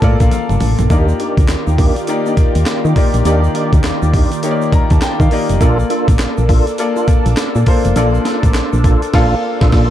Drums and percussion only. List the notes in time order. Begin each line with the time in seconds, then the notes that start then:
0.02 kick, closed hi-hat
0.20 kick, closed hi-hat, shaker
0.31 closed hi-hat, high tom, shaker
0.49 mid tom, shaker
0.60 mid tom, open hi-hat, shaker
0.79 closed hi-hat, floor tom, shaker
0.90 kick, closed hi-hat, shaker
1.09 shaker
1.20 closed hi-hat
1.37 kick, closed hi-hat, shaker
1.48 snare, clap, closed hi-hat, shaker
1.67 shaker
1.78 kick, open hi-hat, shaker
1.96 closed hi-hat, shaker
2.07 closed hi-hat, shaker
2.26 shaker
2.37 kick, closed hi-hat, shaker
2.55 closed hi-hat, shaker
2.66 snare, clap, closed hi-hat, shaker
2.85 shaker
2.96 kick, open hi-hat
3.14 closed hi-hat, shaker
3.25 closed hi-hat, shaker
3.44 shaker
3.55 closed hi-hat
3.73 kick, closed hi-hat, shaker
3.84 snare, clap, closed hi-hat, shaker
4.03 shaker
4.14 kick, open hi-hat, shaker
4.32 closed hi-hat, shaker
4.43 closed hi-hat, shaker
4.62 shaker
4.72 kick, closed hi-hat, shaker
4.90 kick, closed hi-hat, shaker
5.01 snare, clap, closed hi-hat, shaker
5.20 kick, shaker
5.31 open hi-hat
5.49 closed hi-hat, shaker
5.61 kick, closed hi-hat, shaker
5.79 shaker
5.90 closed hi-hat
6.08 kick, closed hi-hat, shaker
6.19 snare, clap, closed hi-hat, shaker
6.38 shaker
6.49 kick, open hi-hat, shaker
6.67 closed hi-hat, shaker
6.78 closed hi-hat, shaker
6.97 shaker
7.08 kick, closed hi-hat, shaker
7.26 closed hi-hat, shaker
7.37 snare, clap, closed hi-hat, shaker
7.55 shaker
7.66 kick, open hi-hat
7.85 closed hi-hat, shaker
7.96 closed hi-hat, shaker
8.15 shaker
8.25 snare, closed hi-hat, shaker
8.43 kick, closed hi-hat, shaker
8.54 snare, clap, closed hi-hat, shaker
8.73 shaker
8.84 kick, closed hi-hat, shaker
9.02 closed hi-hat, shaker
9.14 kick, snare, crash
9.61 kick, snare
9.72 kick, snare, crash